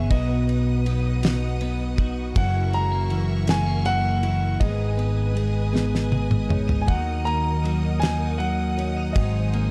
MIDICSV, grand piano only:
0, 0, Header, 1, 2, 480
1, 0, Start_track
1, 0, Key_signature, 5, "major"
1, 0, Tempo, 753769
1, 69, Time_signature, 6, 3, 24, 8
1, 6183, End_track
2, 0, Start_track
2, 0, Title_t, "Grand piano"
2, 0, Program_c, 0, 0
2, 0, Note_on_c, 0, 76, 89
2, 66, Note_on_c, 0, 75, 81
2, 74, Note_off_c, 0, 76, 0
2, 1000, Note_off_c, 0, 75, 0
2, 1511, Note_on_c, 0, 78, 92
2, 1746, Note_on_c, 0, 82, 106
2, 1753, Note_off_c, 0, 78, 0
2, 2196, Note_off_c, 0, 82, 0
2, 2228, Note_on_c, 0, 80, 91
2, 2446, Note_off_c, 0, 80, 0
2, 2457, Note_on_c, 0, 78, 123
2, 2910, Note_off_c, 0, 78, 0
2, 2929, Note_on_c, 0, 75, 66
2, 3447, Note_off_c, 0, 75, 0
2, 4340, Note_on_c, 0, 80, 67
2, 4380, Note_on_c, 0, 78, 86
2, 4384, Note_off_c, 0, 80, 0
2, 4608, Note_off_c, 0, 78, 0
2, 4618, Note_on_c, 0, 82, 111
2, 5092, Note_on_c, 0, 80, 92
2, 5120, Note_off_c, 0, 82, 0
2, 5337, Note_on_c, 0, 78, 93
2, 5348, Note_off_c, 0, 80, 0
2, 5813, Note_on_c, 0, 75, 64
2, 5839, Note_off_c, 0, 78, 0
2, 6183, Note_off_c, 0, 75, 0
2, 6183, End_track
0, 0, End_of_file